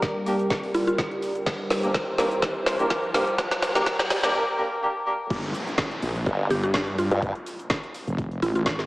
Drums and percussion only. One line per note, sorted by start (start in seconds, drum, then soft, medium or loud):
0.02 kick loud
0.02 snare medium
0.02 closed hi-hat medium
0.02 cabasa soft
0.26 open hi-hat loud
0.26 cabasa medium
0.39 closed hi-hat medium
0.39 cabasa soft
0.50 kick loud
0.50 snare medium
0.50 closed hi-hat medium
0.50 cabasa soft
0.63 open hi-hat medium
0.74 open hi-hat loud
0.74 cabasa medium
0.87 closed hi-hat medium
0.87 cabasa soft
0.98 kick loud
0.98 snare medium
0.98 closed hi-hat medium
0.98 cabasa soft
1.11 closed hi-hat soft
1.22 open hi-hat loud
1.22 cabasa medium
1.35 closed hi-hat medium
1.35 cabasa soft
1.46 kick loud
1.46 snare medium
1.46 closed hi-hat medium
1.46 cabasa soft
1.70 snare medium
1.70 open hi-hat loud
1.70 cabasa medium
1.83 closed hi-hat medium
1.83 cabasa soft
1.94 kick loud
1.94 snare medium
1.94 closed hi-hat medium
1.94 cabasa soft
2.18 snare medium
2.18 open hi-hat loud
2.18 cabasa medium
2.31 closed hi-hat medium
2.31 cabasa soft
2.42 kick loud
2.42 snare medium
2.42 closed hi-hat medium
2.42 cabasa soft
2.66 snare medium
2.66 open hi-hat loud
2.66 cabasa medium
2.79 closed hi-hat medium
2.79 cabasa soft
2.90 kick loud
2.90 snare medium
2.90 closed hi-hat medium
2.90 cabasa soft
3.03 closed hi-hat soft
3.14 snare medium
3.14 open hi-hat loud
3.14 cabasa medium
3.27 closed hi-hat soft
3.27 cabasa soft
3.38 kick loud
3.38 snare medium
3.38 closed hi-hat medium
3.38 cabasa soft
3.51 snare medium
3.62 snare medium
3.62 open hi-hat loud
3.62 cabasa medium
3.75 snare medium
3.75 closed hi-hat medium
3.75 cabasa soft
3.86 kick loud
3.86 snare loud
3.86 closed hi-hat medium
3.86 cabasa soft
3.99 snare medium
4.10 snare loud
4.10 open hi-hat loud
4.10 cabasa medium
4.23 snare medium
4.23 closed hi-hat medium
4.23 cabasa soft
5.30 kick loud
5.30 closed hi-hat medium
5.30 crash loud
5.30 cabasa soft
5.43 closed hi-hat soft
5.54 open hi-hat loud
5.54 cabasa medium
5.67 closed hi-hat medium
5.67 cabasa soft
5.78 kick loud
5.78 snare loud
5.78 closed hi-hat medium
5.78 cabasa soft
5.91 closed hi-hat soft
6.02 open hi-hat loud
6.02 cabasa medium
6.15 open hi-hat medium
6.15 cabasa soft
6.26 kick loud
6.26 closed hi-hat medium
6.26 cabasa soft
6.50 open hi-hat loud
6.50 cabasa medium
6.63 closed hi-hat medium
6.63 cabasa soft
6.74 kick loud
6.74 snare loud
6.74 closed hi-hat medium
6.87 closed hi-hat soft
6.98 open hi-hat loud
6.98 cabasa medium
7.11 closed hi-hat medium
7.11 cabasa soft
7.22 kick loud
7.22 closed hi-hat medium
7.22 cabasa soft
7.35 closed hi-hat soft
7.46 open hi-hat loud
7.46 cabasa medium
7.59 closed hi-hat medium
7.59 cabasa soft
7.70 kick loud
7.70 snare loud
7.70 closed hi-hat medium
7.70 cabasa soft
7.83 closed hi-hat soft
7.94 open hi-hat loud
7.94 cabasa medium
8.07 closed hi-hat medium
8.07 cabasa soft
8.18 kick loud
8.18 closed hi-hat medium
8.18 cabasa soft
8.31 closed hi-hat soft
8.42 open hi-hat loud
8.42 cabasa medium
8.55 closed hi-hat medium
8.55 cabasa soft
8.66 kick loud
8.66 snare loud
8.66 closed hi-hat medium
8.66 cabasa soft
8.79 snare soft
8.79 closed hi-hat soft